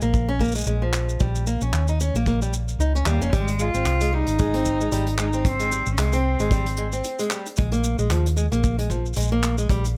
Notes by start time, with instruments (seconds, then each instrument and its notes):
0.01 fingered electric bass A#1, steel-string acoustic guitar A#3, shaker
0.14 kick, shaker
0.29 steel-string acoustic guitar C#4
0.39 steel-string acoustic guitar A#3, kick, shaker
0.44 shaker
0.48 shaker
0.52 shaker
0.55 steel-string acoustic guitar G#3, shaker
0.58 shaker
0.61 shaker
0.64 shaker
0.66 fingered electric bass A#1, steel-string acoustic guitar G#3, shaker
0.82 steel-string acoustic guitar F3
0.93 clap, shaker
1.09 shaker
1.20 fingered electric bass A#1, steel-string acoustic guitar G3, kick, shaker
1.35 shaker
1.47 steel-string acoustic guitar A#3, shaker
1.61 fingered electric bass A#1, steel-string acoustic guitar C#4, shaker
1.73 fingered electric bass D#2, clap, shaker
1.88 steel-string acoustic guitar D#4, shaker
2.00 steel-string acoustic guitar C#4, shaker
2.14 fingered electric bass A#1, steel-string acoustic guitar A#3, shaker
2.26 steel-string acoustic guitar A#3, kick, shaker
2.42 steel-string acoustic guitar G3, shaker
2.53 shaker
2.68 shaker
2.79 fingered electric bass C#2, steel-string acoustic guitar D#4, shaker
2.95 steel-string acoustic guitar C#4, shaker
3.06 fingered electric bass D#2, steel-string acoustic guitar G3, cello A#3, clap, shaker
3.20 fingered electric bass F1, steel-string acoustic guitar C#4, shaker
3.33 fingered electric bass G#1, steel-string acoustic guitar G3, cello G#3, kick, closed hi-hat, shaker
3.48 closed hi-hat, shaker
3.59 steel-string acoustic guitar G#3, cello F4, shaker
3.74 fingered electric bass G#1, steel-string acoustic guitar C4, shaker
3.85 fingered electric bass C2, clap, closed hi-hat, shaker
4.01 steel-string acoustic guitar G#3, closed hi-hat, shaker
4.13 steel-string acoustic guitar G3, cello D#4
4.27 fingered electric bass G#1, closed hi-hat, shaker
4.39 steel-string acoustic guitar G#3, kick, closed hi-hat, shaker
4.54 steel-string acoustic guitar C4, closed hi-hat
4.65 kick, shaker
4.81 steel-string acoustic guitar G#3, shaker
4.92 fingered electric bass G#1, steel-string acoustic guitar G3, closed hi-hat, shaker
5.07 closed hi-hat
5.18 steel-string acoustic guitar G#3, cello D#4, clap, shaker
5.33 steel-string acoustic guitar C4, shaker
5.45 cello C4, kick, closed hi-hat, shaker
5.60 steel-string acoustic guitar G#3, closed hi-hat, shaker
5.72 steel-string acoustic guitar G3, shaker
5.86 fingered electric bass G#1, shaker
5.92 cello C#4
5.98 fingered electric bass C2, steel-string acoustic guitar G#3, cello C4, clap, closed hi-hat, shaker
6.13 steel-string acoustic guitar C4, closed hi-hat, shaker
6.39 fingered electric bass G#1, steel-string acoustic guitar G#3, closed hi-hat, shaker
6.51 steel-string acoustic guitar G3, kick, closed hi-hat, shaker
6.66 closed hi-hat
6.77 steel-string acoustic guitar G#3, shaker
6.92 steel-string acoustic guitar C4, shaker
7.04 closed hi-hat, shaker
7.19 steel-string acoustic guitar G#3, closed hi-hat, shaker
7.30 steel-string acoustic guitar G3, clap, shaker
7.46 closed hi-hat, shaker
7.56 fingered electric bass A#1, steel-string acoustic guitar G#3, kick, closed hi-hat, shaker
7.72 steel-string acoustic guitar A#3, closed hi-hat, shaker
7.84 shaker
7.98 fingered electric bass A#1, steel-string acoustic guitar G#3, shaker
8.10 fingered electric bass D#2, steel-string acoustic guitar F3, clap, closed hi-hat, shaker
8.26 closed hi-hat, shaker
8.37 steel-string acoustic guitar G#3, shaker
8.52 fingered electric bass A#1, steel-string acoustic guitar A#3, closed hi-hat, shaker
8.64 kick, shaker
8.78 steel-string acoustic guitar G#3, closed hi-hat
8.90 steel-string acoustic guitar F3, kick, shaker
9.06 shaker
9.13 closed hi-hat, shaker
9.16 fingered electric bass A#1, steel-string acoustic guitar G#3, shaker
9.20 shaker
9.22 shaker
9.24 shaker
9.27 shaker
9.32 steel-string acoustic guitar A#3
9.43 clap, closed hi-hat, shaker
9.58 steel-string acoustic guitar G#3, shaker
9.69 fingered electric bass A#1, steel-string acoustic guitar G3, kick, closed hi-hat, shaker
9.85 closed hi-hat, shaker